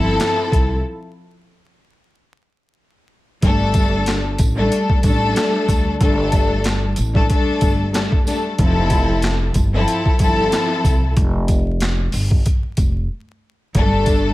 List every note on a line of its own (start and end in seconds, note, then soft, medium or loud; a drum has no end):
0.00 0.15 G1 medium
0.00 0.77 F3 loud
0.00 0.78 C4 medium
0.00 0.78 E4 medium
0.00 0.79 A4 loud
0.20 snare loud
0.20 clap medium
0.20 closed hi-hat medium
0.52 0.80 C2 medium
0.52 kick medium
0.52 closed hi-hat medium
3.42 4.35 G1 loud
3.42 4.33 G3 loud
3.42 4.33 A3 medium
3.42 4.33 D4 medium
3.42 4.34 A4 loud
3.42 kick loud
3.42 closed hi-hat medium
3.74 kick medium
3.74 closed hi-hat medium
3.74 tambourine soft
4.06 snare loud
4.06 clap medium
4.06 closed hi-hat medium
4.38 4.67 A1 loud
4.38 kick medium
4.38 closed hi-hat medium
4.38 tambourine medium
4.55 4.99 G3 loud
4.55 5.00 A3 medium
4.55 5.00 D4 medium
4.55 5.01 A4 loud
4.72 closed hi-hat medium
4.89 kick loud
5.02 5.31 A1 medium
5.02 5.93 G3 loud
5.02 5.93 A3 medium
5.02 5.94 D4 medium
5.02 5.94 A4 loud
5.02 kick medium
5.02 closed hi-hat medium
5.02 tambourine soft
5.36 snare loud
5.36 clap loud
5.36 closed hi-hat loud
5.68 5.96 D2 loud
5.68 kick loud
5.68 closed hi-hat medium
5.68 tambourine medium
5.99 6.93 G1 loud
5.99 6.90 G3 loud
5.99 6.90 A3 medium
5.99 6.91 D4 medium
5.99 6.91 A4 loud
5.99 kick loud
5.99 closed hi-hat medium
6.32 kick medium
6.32 closed hi-hat medium
6.32 tambourine soft
6.64 snare loud
6.64 clap medium
6.64 closed hi-hat medium
6.96 7.25 A1 medium
6.96 closed hi-hat medium
6.96 tambourine medium
7.14 7.27 G3 medium
7.14 7.28 A3 medium
7.14 7.29 D4 medium
7.14 7.30 A4 loud
7.14 kick loud
7.28 7.89 G3 medium
7.28 7.89 A3 medium
7.28 7.90 D4 medium
7.28 7.90 A4 loud
7.28 kick medium
7.28 closed hi-hat medium
7.61 8.05 G1 medium
7.61 kick loud
7.61 closed hi-hat medium
7.61 tambourine medium
7.91 8.23 G3 medium
7.91 8.23 A3 medium
7.91 8.24 D4 medium
7.91 8.24 A4 medium
7.91 snare loud
7.91 closed hi-hat loud
7.96 clap loud
8.12 kick loud
8.24 8.55 G3 medium
8.24 8.56 A3 medium
8.24 8.56 D4 medium
8.24 8.57 A4 medium
8.24 closed hi-hat medium
8.24 tambourine medium
8.28 snare soft
8.59 9.51 F1 loud
8.59 9.49 F3 loud
8.59 9.49 C4 medium
8.59 9.50 E4 medium
8.59 9.50 A4 loud
8.59 kick loud
8.59 closed hi-hat medium
8.90 kick medium
8.90 closed hi-hat medium
8.90 tambourine soft
9.22 snare loud
9.22 clap medium
9.22 closed hi-hat medium
9.54 9.83 G1 loud
9.54 kick medium
9.54 closed hi-hat medium
9.54 tambourine medium
9.73 10.17 F3 medium
9.73 10.17 C4 medium
9.73 10.17 E4 medium
9.73 10.18 A4 loud
9.88 closed hi-hat medium
10.05 kick loud
10.19 10.47 G1 medium
10.19 11.10 F3 loud
10.19 11.10 C4 medium
10.19 11.11 E4 medium
10.19 11.11 A4 loud
10.19 kick medium
10.19 closed hi-hat medium
10.19 tambourine soft
10.52 snare loud
10.52 clap loud
10.52 closed hi-hat loud
10.84 11.12 C2 medium
10.84 kick loud
10.84 closed hi-hat medium
10.84 tambourine medium
11.17 12.10 F1 loud
11.17 kick loud
11.17 closed hi-hat medium
11.48 kick medium
11.48 closed hi-hat medium
11.48 tambourine soft
11.80 snare loud
11.80 clap medium
11.80 closed hi-hat medium
12.12 12.41 G1 medium
12.12 open hi-hat medium
12.12 tambourine medium
12.31 kick loud
12.46 kick medium
12.46 closed hi-hat medium
12.77 13.05 F1 medium
12.77 kick loud
12.77 closed hi-hat medium
12.77 tambourine medium
13.75 14.34 G1 loud
13.75 14.34 G3 loud
13.75 14.34 A3 medium
13.75 14.34 D4 medium
13.75 14.34 A4 loud
13.75 kick loud
13.75 closed hi-hat medium
14.06 kick medium
14.06 closed hi-hat medium
14.06 tambourine soft